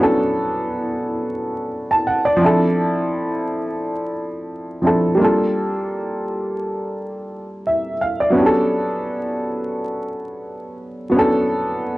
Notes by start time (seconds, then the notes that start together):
Already playing: F#3 B3
0.00 C#4 D4 A4
1.91 A5
2.07 F#5
2.25 D5
2.37 F3 C4
2.41 D4 E4
2.46 A4
4.82 F3 C4 D4 E4
4.87 A4
5.15 G3 A#3
5.19 D4 F4
5.24 A4
7.67 E5
8.01 F5
8.20 D5
8.30 F#3 B3
8.35 C#4 D4
8.39 G4
8.46 A4
11.10 F#3 B3
11.14 C#4 D4
11.18 A4